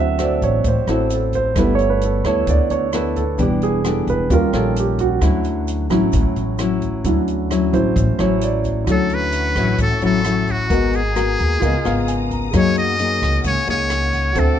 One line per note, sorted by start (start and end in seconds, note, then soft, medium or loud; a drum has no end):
0.00 0.38 D2 medium
0.00 0.63 D3 medium
0.00 1.58 F#3 soft
0.00 1.58 C4 soft
0.00 0.89 E4 soft
0.00 0.19 E5 medium
0.00 1.59 F#5 medium
0.19 0.65 C4 medium
0.19 0.65 F#4 medium
0.19 0.65 A4 medium
0.19 0.43 D5 medium
0.19 cross-stick medium
0.19 closed hi-hat soft
0.19 shaker medium
0.42 0.63 A1 medium
0.42 0.65 C#5 medium
0.42 kick soft
0.42 closed hi-hat soft
0.42 shaker soft
0.64 0.75 A1 medium
0.64 1.54 A2 soft
0.64 0.89 C5 medium
0.64 kick medium
0.64 closed hi-hat soft
0.64 shaker medium
0.87 1.52 A1 medium
0.87 1.53 C4 medium
0.87 1.10 E4 medium
0.87 1.53 F#4 medium
0.87 1.53 A4 medium
0.87 cross-stick medium
0.87 closed hi-hat soft
0.87 shaker soft
1.10 1.34 A4 medium
1.10 closed hi-hat soft
1.10 shaker medium
1.33 1.57 C5 medium
1.33 kick soft
1.33 closed hi-hat soft
1.33 shaker soft
1.56 2.21 G1 medium
1.56 2.45 G3 medium
1.56 1.87 A3 soft
1.56 2.02 B3 medium
1.56 1.87 B3 soft
1.56 2.02 E4 medium
1.56 1.88 E4 soft
1.56 2.02 A4 medium
1.56 1.73 B4 medium
1.56 kick medium
1.56 cross-stick medium
1.56 closed hi-hat soft
1.56 shaker medium
1.75 1.88 C#5 medium
1.75 closed hi-hat soft
1.80 shaker soft
1.90 2.03 B4 medium
2.01 2.26 A4 medium
2.01 closed hi-hat soft
2.01 shaker medium
2.24 2.46 D2 medium
2.24 2.90 B3 medium
2.24 2.91 E4 medium
2.24 2.91 A4 medium
2.24 2.48 C#5 medium
2.24 kick soft
2.24 cross-stick medium
2.24 closed hi-hat soft
2.24 shaker soft
2.47 2.58 D2 medium
2.47 3.37 D3 soft
2.47 2.71 D5 medium
2.47 kick medium
2.47 closed hi-hat soft
2.47 shaker medium
2.70 3.35 D2 medium
2.70 2.93 C#5 medium
2.70 closed hi-hat soft
2.70 shaker soft
2.93 3.23 B3 medium
2.93 3.23 E4 medium
2.93 3.23 A4 medium
2.93 3.17 B4 medium
2.93 cross-stick medium
2.93 closed hi-hat soft
2.93 shaker medium
3.16 3.39 A4 medium
3.16 kick soft
3.16 closed hi-hat soft
3.16 shaker soft
3.38 4.03 E1 medium
3.38 4.28 E3 medium
3.38 4.04 G3 soft
3.38 3.81 B3 medium
3.38 3.81 D4 medium
3.38 4.05 D4 soft
3.38 3.81 G4 medium
3.38 kick medium
3.38 closed hi-hat soft
3.38 shaker medium
3.42 3.63 G4 medium
3.62 3.85 G#4 medium
3.62 closed hi-hat soft
3.62 shaker soft
3.84 4.29 B3 soft
3.84 4.29 D4 medium
3.84 4.29 G4 medium
3.84 4.08 A4 medium
3.84 cross-stick medium
3.84 closed hi-hat soft
3.84 shaker medium
4.07 4.29 E1 medium
4.07 4.31 B4 medium
4.07 kick soft
4.07 closed hi-hat soft
4.07 shaker soft
4.30 4.41 D#2 medium
4.30 5.19 D#3 medium
4.30 4.96 G3 soft
4.30 4.50 C#4 medium
4.30 4.96 C#4 soft
4.30 4.50 F4 medium
4.30 4.97 F4 medium
4.30 4.50 G4 medium
4.30 4.54 A#4 medium
4.30 kick medium
4.30 closed hi-hat soft
4.30 shaker medium
4.53 5.18 A#1 medium
4.53 5.18 C#4 medium
4.53 5.19 F4 medium
4.53 5.19 G4 medium
4.53 4.76 A4 medium
4.53 cross-stick medium
4.53 closed hi-hat soft
4.53 shaker soft
4.76 5.00 G4 medium
4.76 closed hi-hat soft
4.76 shaker medium
4.99 5.64 F#4 medium
4.99 kick soft
4.99 closed hi-hat soft
4.99 shaker soft
5.21 5.86 D2 medium
5.21 6.11 D3 medium
5.21 5.87 F#3 soft
5.21 5.87 C#4 medium
5.21 5.87 E4 medium
5.21 kick medium
5.21 cross-stick medium
5.21 closed hi-hat soft
5.21 shaker medium
5.44 closed hi-hat soft
5.44 shaker soft
5.68 closed hi-hat soft
5.68 shaker medium
5.90 6.11 A1 medium
5.90 6.55 F#3 medium
5.90 6.21 F#3 soft
5.90 6.55 C#4 medium
5.90 6.21 C#4 soft
5.90 6.56 E4 medium
5.90 6.21 E4 medium
5.90 kick soft
5.90 cross-stick medium
5.90 closed hi-hat soft
5.90 shaker soft
6.12 6.24 A1 medium
6.12 7.02 A2 medium
6.12 kick medium
6.12 closed hi-hat soft
6.12 shaker medium
6.36 7.01 A1 medium
6.36 closed hi-hat soft
6.36 shaker soft
6.59 7.21 F#3 medium
6.59 7.21 C#4 medium
6.59 7.21 E4 medium
6.59 cross-stick medium
6.59 closed hi-hat soft
6.59 shaker medium
6.82 kick soft
6.82 closed hi-hat soft
6.82 shaker soft
7.04 7.69 D2 medium
7.04 7.94 D3 medium
7.04 7.70 F#3 soft
7.04 7.70 C#4 soft
7.04 7.71 E4 soft
7.04 kick medium
7.04 closed hi-hat soft
7.04 shaker medium
7.28 closed hi-hat soft
7.28 shaker soft
7.51 7.96 F#3 medium
7.51 7.96 C#4 medium
7.51 7.96 E4 medium
7.51 cross-stick medium
7.51 closed hi-hat soft
7.51 shaker medium
7.73 7.94 A1 medium
7.73 7.93 F#3 soft
7.73 7.94 C#4 soft
7.73 7.94 E4 soft
7.73 8.16 C5 medium
7.73 kick soft
7.73 closed hi-hat soft
7.73 shaker soft
7.96 8.07 A1 medium
7.96 8.85 A2 medium
7.96 kick medium
7.96 closed hi-hat soft
7.96 shaker medium
8.19 8.84 A1 medium
8.19 8.84 F#3 medium
8.19 8.84 C#4 medium
8.19 8.84 E4 medium
8.19 8.42 C#5 medium
8.19 cross-stick medium
8.19 closed hi-hat soft
8.19 shaker soft
8.41 8.74 D5 medium
8.41 closed hi-hat soft
8.41 shaker medium
8.64 kick soft
8.64 closed hi-hat soft
8.64 shaker soft
8.84 9.52 D2 medium
8.84 9.77 D3 medium
8.84 9.52 F#3 medium
8.84 10.68 C#4 medium
8.84 9.52 C#4 soft
8.84 10.65 E4 soft
8.84 10.66 F#4 soft
8.84 10.69 E5 medium
8.84 11.59 F#5 medium
8.84 10.69 C#6 medium
8.84 kick medium
8.84 cross-stick medium
8.84 closed hi-hat soft
8.84 shaker medium
8.88 9.53 E4 medium
8.88 10.67 A4 soft
8.88 9.16 A4 medium
8.88 10.68 C#5 medium
9.10 closed hi-hat soft
9.10 shaker soft
9.14 9.81 B4 loud
9.32 closed hi-hat soft
9.32 shaker medium
9.56 9.77 A1 medium
9.56 9.99 F#3 medium
9.56 9.99 C#4 medium
9.56 9.99 E4 medium
9.56 kick soft
9.56 cross-stick medium
9.56 closed hi-hat soft
9.56 shaker soft
9.78 9.89 A1 medium
9.78 10.68 A2 medium
9.78 10.02 A4 medium
9.78 kick medium
9.78 closed hi-hat soft
9.78 shaker medium
10.02 10.66 A1 medium
10.02 10.21 F#3 medium
10.02 10.21 C#4 medium
10.02 10.21 E4 medium
10.02 10.53 A4 medium
10.02 closed hi-hat soft
10.02 shaker soft
10.24 10.69 F#3 medium
10.24 10.69 C#4 medium
10.24 10.69 E4 medium
10.24 cross-stick medium
10.24 closed hi-hat soft
10.24 shaker medium
10.47 10.97 F#4 medium
10.47 kick soft
10.47 closed hi-hat soft
10.47 shaker soft
10.68 11.35 G#1 medium
10.68 11.59 G#3 medium
10.68 11.00 B3 medium
10.68 11.59 F#4 soft
10.68 11.00 F#4 medium
10.68 11.61 G#4 medium
10.68 11.60 A#4 soft
10.68 11.00 A#4 medium
10.68 11.61 G#5 medium
10.68 11.60 A#5 medium
10.68 kick medium
10.68 closed hi-hat soft
10.68 shaker medium
10.74 11.62 D#5 soft
10.93 12.32 G#4 medium
10.93 closed hi-hat soft
10.93 shaker soft
11.15 11.60 B3 soft
11.15 11.60 F#4 soft
11.15 11.60 A#4 medium
11.15 cross-stick medium
11.15 closed hi-hat soft
11.15 shaker medium
11.39 11.60 D#2 medium
11.39 kick soft
11.39 closed hi-hat soft
11.39 shaker soft
11.60 11.72 C#2 medium
11.60 12.51 C#3 medium
11.60 11.75 B3 soft
11.60 12.50 F4 medium
11.60 11.75 F4 medium
11.60 12.51 A#4 medium
11.60 11.75 A#4 medium
11.60 12.52 F5 medium
11.60 12.52 A#5 medium
11.60 14.33 D#6 medium
11.60 kick medium
11.60 closed hi-hat soft
11.60 shaker medium
11.65 12.53 D#5 medium
11.85 12.50 G#1 medium
11.85 12.50 B3 medium
11.85 12.50 F4 medium
11.85 12.50 A#4 medium
11.85 12.07 F5 medium
11.85 cross-stick medium
11.85 closed hi-hat soft
11.85 shaker soft
12.08 12.29 G#5 medium
12.08 closed hi-hat soft
12.08 shaker medium
12.31 12.53 A#5 medium
12.31 kick soft
12.31 closed hi-hat soft
12.31 shaker soft
12.51 13.18 F#2 medium
12.51 13.43 F#3 medium
12.51 12.95 A#3 medium
12.51 12.96 D#4 medium
12.51 14.31 G#4 soft
12.51 12.96 G#4 medium
12.51 14.34 A#4 medium
12.51 14.32 A#4 soft
12.51 14.59 F#5 medium
12.51 14.34 G#5 medium
12.51 kick medium
12.51 cross-stick medium
12.51 closed hi-hat soft
12.51 shaker medium
12.55 14.33 C#5 soft
12.55 12.76 C#5 medium
12.55 14.34 D#5 soft
12.76 13.42 D#5 loud
12.76 closed hi-hat soft
12.76 shaker soft
12.99 13.64 A#3 soft
12.99 13.64 D#4 medium
12.99 13.64 G#4 medium
12.99 closed hi-hat soft
12.99 shaker medium
13.22 13.43 C#2 medium
13.22 kick soft
13.22 cross-stick medium
13.22 closed hi-hat soft
13.22 shaker soft
13.44 13.55 C#2 medium
13.44 14.34 C#3 medium
13.44 13.67 C#5 loud
13.44 kick medium
13.44 closed hi-hat soft
13.44 shaker medium
13.67 14.32 C#2 medium
13.67 14.32 A#3 medium
13.67 14.32 D#4 medium
13.67 14.33 G#4 medium
13.67 14.41 C#5 medium
13.67 closed hi-hat soft
13.67 shaker soft
13.90 cross-stick medium
13.90 closed hi-hat soft
13.90 shaker medium
14.13 kick soft
14.13 closed hi-hat soft
14.13 shaker soft
14.33 14.59 D2 medium
14.33 14.59 D3 medium
14.33 14.59 C4 medium
14.33 14.59 C4 soft
14.33 14.59 F#4 soft
14.33 14.59 F#4 medium
14.33 14.59 A4 soft
14.33 14.59 A4 medium
14.33 14.59 A5 medium
14.33 14.59 D6 medium
14.33 kick medium
14.33 closed hi-hat soft
14.33 shaker medium
14.39 14.59 A4 medium
14.39 14.59 E5 medium